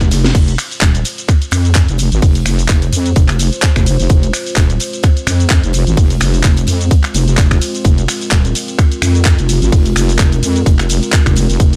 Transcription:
0.01 kick, closed hi-hat, shaker
0.11 F1, snare, closed hi-hat, open hi-hat, ride, shaker
0.24 snare, open hi-hat, shaker
0.35 F1 G#3 C4 F4 C5, kick, closed hi-hat, crash, ride, shaker
0.48 closed hi-hat, shaker
0.58 finger snap, closed hi-hat, open hi-hat, ride, shaker
0.71 open hi-hat, shaker
0.81 D#1, kick, snare, clap, closed hi-hat, ride, shaker
0.95 closed hi-hat, shaker
1.05 closed hi-hat, open hi-hat, ride, shaker
1.18 closed hi-hat, shaker
1.28 finger snap, kick, closed hi-hat, ride, shaker
1.42 closed hi-hat, shaker
1.51 F2, finger snap, closed hi-hat, open hi-hat, ride, shaker
1.65 closed hi-hat, shaker
1.75 kick, snare, clap, closed hi-hat, ride, shaker
1.88 F1, closed hi-hat, shaker
1.98 closed hi-hat, open hi-hat, ride, shaker
2.12 G#1, closed hi-hat, shaker
2.22 F1, kick, closed hi-hat, open hi-hat, ride, shaker
2.35 closed hi-hat, shaker
2.46 F1, finger snap, snare, closed hi-hat, open hi-hat, ride, shaker
2.59 open hi-hat, shaker
2.69 F1, kick, snare, clap, closed hi-hat, ride, shaker
2.82 closed hi-hat, shaker
2.92 F2, closed hi-hat, open hi-hat, ride, shaker
3.06 closed hi-hat, shaker
3.16 F1, kick, closed hi-hat, ride, shaker
3.28 finger snap, clap, closed hi-hat, shaker
3.39 closed hi-hat, open hi-hat, ride, shaker
3.53 closed hi-hat, shaker
3.62 kick, snare, clap, closed hi-hat, ride, shaker
3.76 F1, finger snap, kick, snare, closed hi-hat, shaker
3.86 closed hi-hat, open hi-hat, ride, shaker
3.99 F1, open hi-hat, shaker
4.09 F1, kick, closed hi-hat, ride, shaker
4.23 closed hi-hat, shaker
4.33 finger snap, closed hi-hat, open hi-hat, ride, shaker
4.46 open hi-hat, shaker
4.56 D#1, kick, snare, clap, closed hi-hat, ride, shaker
4.70 closed hi-hat, shaker
4.80 closed hi-hat, open hi-hat, ride, shaker
4.93 closed hi-hat, shaker
5.03 finger snap, kick, closed hi-hat, ride, shaker
5.17 closed hi-hat, shaker
5.27 F2, finger snap, closed hi-hat, open hi-hat, ride, shaker
5.40 closed hi-hat, shaker
5.50 kick, snare, clap, closed hi-hat, ride, shaker
5.64 F1, closed hi-hat, shaker
5.73 closed hi-hat, open hi-hat, ride, shaker
5.87 G#1, closed hi-hat, shaker
5.97 F1, kick, closed hi-hat, open hi-hat, ride, shaker
6.10 closed hi-hat, shaker
6.20 F1, finger snap, snare, closed hi-hat, open hi-hat, ride, shaker
6.34 open hi-hat, shaker
6.44 F1, kick, snare, clap, closed hi-hat, ride, shaker
6.57 closed hi-hat, shaker
6.67 F2, closed hi-hat, open hi-hat, ride, shaker
6.81 closed hi-hat, shaker
6.91 kick, closed hi-hat, ride, shaker
7.03 finger snap, clap, closed hi-hat, shaker
7.14 F1, closed hi-hat, open hi-hat, ride, shaker
7.28 closed hi-hat, shaker
7.37 kick, snare, clap, closed hi-hat, ride, shaker
7.51 finger snap, kick, snare, closed hi-hat, shaker
7.61 closed hi-hat, open hi-hat, ride, shaker
7.75 open hi-hat, shaker
7.84 F1 A#4, kick, closed hi-hat, ride, shaker
7.98 closed hi-hat, shaker
8.08 finger snap, closed hi-hat, open hi-hat, ride, shaker
8.21 open hi-hat, shaker
8.31 D#1, kick, snare, clap, closed hi-hat, ride, shaker
8.45 closed hi-hat, shaker
8.55 closed hi-hat, open hi-hat, ride, shaker
8.68 closed hi-hat, shaker
8.78 finger snap, kick, closed hi-hat, ride, shaker
8.92 closed hi-hat, shaker
9.02 F2, finger snap, closed hi-hat, open hi-hat, ride, shaker
9.15 closed hi-hat, shaker
9.25 kick, snare, clap, closed hi-hat, ride, shaker
9.39 F1, closed hi-hat, shaker
9.49 closed hi-hat, open hi-hat, ride, shaker
9.62 G#1, closed hi-hat, shaker
9.72 F1, kick, closed hi-hat, open hi-hat, ride, shaker
9.86 closed hi-hat, shaker
9.96 F1, finger snap, snare, closed hi-hat, open hi-hat, ride, shaker
10.09 open hi-hat, shaker
10.19 F1, kick, snare, clap, closed hi-hat, ride, shaker
10.32 closed hi-hat, shaker
10.43 F2, closed hi-hat, open hi-hat, ride, shaker
10.56 closed hi-hat, shaker
10.66 F1, kick, closed hi-hat, ride, shaker
10.79 finger snap, clap, closed hi-hat, shaker
10.89 closed hi-hat, open hi-hat, ride, shaker
11.03 closed hi-hat, shaker
11.13 kick, snare, clap, closed hi-hat, ride, shaker
11.25 F1, finger snap, kick, snare, closed hi-hat, shaker
11.36 closed hi-hat, open hi-hat, ride, shaker
11.49 F1, open hi-hat, shaker
11.60 F1, kick, closed hi-hat, ride, shaker
11.73 closed hi-hat

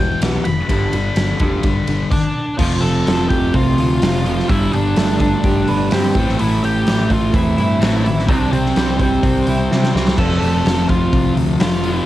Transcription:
Already playing: E2 B2 E3 G5
0.00 E1 E3 G3
0.21 B1 E3 G3 B3, snare, ride
0.45 F1 E3 B5, ride
0.68 G1 G2 D3 G3, kick, ride
0.93 G1 G2 D3, ride
1.16 G1 G2 D3, snare, ride
1.39 F1 G2 D3 G3, kick, ride
1.44 G2
1.63 G1 G2 D3, kick, ride
1.87 G1 G2 D3, ride
2.11 D4 D5, kick, crash
2.58 F1 F2 C3 F3 F4 F5, kick, crash
2.62 F3
2.81 F1 A4 A5, open hi-hat
3.07 F1 F3, snare, open hi-hat
3.29 F1 A3 G4 G5, kick, open hi-hat
3.54 C2 C4 F4 F5, kick, open hi-hat
3.78 D2 F4, open hi-hat
4.02 F1 C4, snare, open hi-hat
4.24 F2 C3 F3, open hi-hat
4.40 snare
4.49 G1 G2 D3 G3 E4 E5, kick, open hi-hat
4.72 G1 D4 D5, open hi-hat
4.96 G1 A3, snare, open hi-hat
5.20 D4 D5, kick, open hi-hat
5.44 G1 G4, kick, open hi-hat
5.68 G1 B4, open hi-hat
5.91 G2 C4 G4 C5, snare, open hi-hat
6.15 A1 A2 E3 A3, kick, open hi-hat
6.29 snare
6.39 A1 A2 E4 E5, open hi-hat
6.64 A1 G4 G5, open hi-hat
6.87 A1 E3, snare, open hi-hat
7.10 A1 A3 F4 F5, kick, open hi-hat
7.34 E2 C4 E4 E5, kick, open hi-hat
7.57 G2 E4, open hi-hat
7.80 A1 A2 E3 A3 C4, snare, open hi-hat
8.04 E3, open hi-hat
8.19 snare
8.26 C2 C3 G3 C4, kick, open hi-hat
8.31 D4 D5
8.52 C2 C4 C5, open hi-hat
8.66 snare
8.76 C2 E3, snare, open hi-hat
8.99 G3 C4 C5, kick, open hi-hat
9.23 C2 C4, kick, open hi-hat
9.47 C2 E4, open hi-hat
9.71 C3 C4, snare
9.83 snare
9.92 C2 C3 E3 G3 C4, snare
10.08 snare
10.17 F1 F2 C3 F3 A4 A5, kick, crash
10.42 F1, open hi-hat
10.65 F1, snare, open hi-hat
10.89 F1 F4 F5, kick, open hi-hat
11.13 C2, kick, open hi-hat
11.36 D2, open hi-hat
11.60 F1 F4 F5, snare, open hi-hat
11.83 F2 C3 F3, open hi-hat

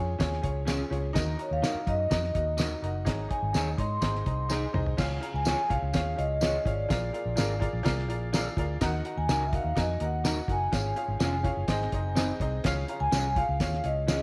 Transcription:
Already playing: F2 C#4 F4 G#4 C#5 G#5
0.19 D#2 C#4 F4 G#4 C#5, kick, snare, closed hi-hat, tambourine
0.33 snare
0.42 C#2 C#4 F4 G#4 C#5, kick, closed hi-hat
0.65 C#4 F4 G#4 C#5, snare, closed hi-hat, tambourine
0.90 C#2 C#4 F4 G#4 C#5, closed hi-hat
1.13 D#2 D#3 D#4 F#4 A#4 D#5, kick, snare, closed hi-hat, tambourine
1.37 D#4 F#4 A#4 D#5, closed hi-hat
1.42 C#5
1.51 D#2 F5
1.62 D#4 F#4 A#4 D#5, snare, closed hi-hat, tambourine
1.74 muted fingered electric bass stroke
1.86 F#2 D#4 F#4 A#4 D#5, kick, closed hi-hat
2.10 F2 D#4 F#4 A#4 D#5, kick, snare, closed hi-hat, tambourine
2.24 snare
2.34 D#2 D#4 F#4 A#4 D#5, kick, closed hi-hat
2.57 D#4 F#4 A#4 D#5, snare, closed hi-hat, tambourine
2.82 F#1 D#4 F#4 A#4 D#5 F#5, closed hi-hat
3.05 G#1 G#2 D#4 G#4 C#5 D#5 A#5, kick, snare, closed hi-hat, tambourine
3.28 D#4 G#4 C#5 D#5 G#5, kick, closed hi-hat
3.42 G#1
3.53 D#2 D#4 G#4 C#5 D#5 A#5, snare, closed hi-hat, tambourine
3.78 G#2 D#4 G#4 C#5 D#5 C6, kick, closed hi-hat
4.01 G#1 G#2 D#4 G#4 C5 D#5, kick, snare, closed hi-hat, tambourine
4.15 snare
4.25 C2 D#4 G#4 C5 D#5, kick, closed hi-hat
4.49 D#4 G#4 C5 D#5, snare, tambourine
4.73 C2 D#4 G#4 C5 D#5, mid tom
4.86 floor tom
4.97 C#2 C#3 C#4 F4 G#4 C#5 F5, kick, snare, crash, tambourine
5.20 C#4 F4 G#4 C#5 F5 A#5, closed hi-hat
5.34 C#2 G#5
5.45 C#4 F4 G#4 C#5 F5, snare, closed hi-hat, tambourine
5.69 C2 C#4 F4 G#4 C#5 F5, kick, closed hi-hat
5.82 C#2
5.93 D#2 C#4 F4 G#4 C#5 F5, kick, snare, closed hi-hat, tambourine
6.16 C#2 C#4 F4 G#4 C#5 D#5 F5, closed hi-hat
6.41 C#4 F4 G#4 C#5 F5, snare, closed hi-hat, tambourine
6.65 G#1 C#4 F4 G#4 C#5 D5 F5, kick, closed hi-hat
6.89 A#1 A#2 F4 G#4 A#4 D5 F5, kick, snare, closed hi-hat, tambourine
7.13 F4 G#4 A#4 D5 F5, closed hi-hat
7.25 A#1
7.36 G#1 D4 F4 G#4 A#4 D5 F5, snare, closed hi-hat, tambourine
7.40 A#4
7.59 F4 G#4 A#4 D5 F5, kick, closed hi-hat
7.73 A#1
7.83 C2 F4 G#4 A#4 D5 F5, kick, snare, closed hi-hat, tambourine
7.99 snare
8.08 A#1 F4 G#4 A#4 D5 F5, closed hi-hat
8.33 D4 F4 G#4 A#4 D5 F5, snare, closed hi-hat, tambourine
8.57 D2 F4 G#4 A#4 D5 F5, kick, closed hi-hat
8.81 D#2 D#3 D#4 F#4 A#4 D#5 F#5, kick, snare, closed hi-hat, tambourine
9.04 D#4 F#4 A#4 D#5 F#5 A#5, closed hi-hat
9.17 D#2 G#5
9.29 C#2 D#4 F#4 A#4 D#5 G#5, snare, closed hi-hat, tambourine
9.46 E5
9.52 D#4 F#4 A#4 D#5 F5 F#5, kick, closed hi-hat
9.64 D#2
9.75 F2 D#4 F#4 A#4 D#5 G#5, kick, snare, closed hi-hat, tambourine
10.00 D#2 D#4 F#4 A#4 D#5 F#5, closed hi-hat
10.05 F#5
10.24 D#4 F#4 A#4 D#5 F#5, snare, closed hi-hat, tambourine
10.48 F#1 D#4 F#4 A#4 D#5 F#5 G#5, kick, closed hi-hat
10.72 G#1 G#2 C#4 F4 G#4 C#5 F5, kick, snare, closed hi-hat, tambourine
10.96 C#4 F4 G#4 C#5 F5, closed hi-hat
11.08 G#1
11.20 F1 C#4 F4 G#4 C#5 F5, snare, closed hi-hat, tambourine
11.43 C#4 F4 G#4 C#5 F5, kick, closed hi-hat
11.57 F#1
11.68 G#1 G#2 C4 D#4 G#4 C5 D#5, kick, snare, closed hi-hat, tambourine
11.81 snare
11.92 F#1 C4 D#4 G#4 C5 D#5, kick, closed hi-hat
12.15 C4 D#4 G#4 C5 D#5, snare, closed hi-hat, tambourine
12.40 C2 C4 D#4 G#4 C5 D#5, kick, closed hi-hat
12.64 C#2 C#3 C#4 F4 G#4 C#5 F5, kick, snare, closed hi-hat, tambourine
12.88 C#4 F4 G#4 C#5 F5 A#5, closed hi-hat
13.00 C#2 G#5
13.12 C2 C#4 F4 G#4 C#5 F5, snare, closed hi-hat, tambourine
13.36 C#4 F4 G#4 C#5 F5, kick, closed hi-hat
13.49 C#2
13.60 D#2 C#4 F4 G#4 C#5 F5, kick, snare, closed hi-hat, tambourine
13.73 snare
13.83 C#2 C#4 F4 G#4 C#5 D#5 F5, closed hi-hat
14.07 C#4 F4 G#4 C#5 F5, snare, closed hi-hat, tambourine

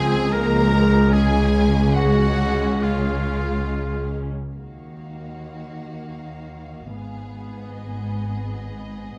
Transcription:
Already playing: C#2 F3 G#3 C4 G#4 G#5
0.32 F3 A#3 A#4 A#5
0.72 G#3
1.11 G#3 C#4 G#4 G#5
1.95 G#3 C#4 F#4 F#5
2.83 F4 F5
4.53 D#2 D#3 A#3 F#4 F5
6.90 G#1 G#2 B3 G#4
7.67 D#5

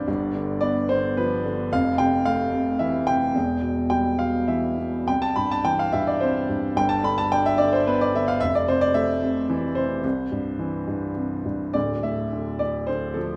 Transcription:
Already playing: G2 D5
0.08 G1 G2
0.35 D3
0.61 B3 D5
0.89 D3 C5
1.17 F3 B4
1.45 D3
1.72 F1 F2 F5
1.98 C3 G5
2.25 A3 F5
2.52 C3
2.79 E3 E5
3.07 C3 G5
3.34 E1 E2
3.62 B2
3.90 G3 G5
4.18 B2 F5
4.48 E3 E5
4.78 B2
5.07 C2 G5
5.22 A5
5.36 G2 B5
5.51 A5
5.65 E3 G5
5.79 F5
5.92 G2 E5
6.07 D5
6.20 C3 C5
6.49 G2
6.76 G1 G2 G5
6.89 A5
7.04 D3 B5
7.18 A5
7.32 D4 G5
7.46 E5
7.58 D3 D5
7.73 C5
7.87 B3 B4
8.01 D5
8.14 D3 E5
8.28 F5
8.41 F1 F2 E5
8.55 D5
8.68 C3 C5
8.81 D5
8.94 A3 E5
9.23 C3
9.50 E3
9.75 C3 C5
10.04 C2
10.32 G2
10.59 E3
10.88 G2
11.16 C3
11.45 G2
11.74 D1 D2 D5
12.03 A2 E5
12.33 D3
12.59 A2 D5
12.87 D3 C5
13.14 F3 A4

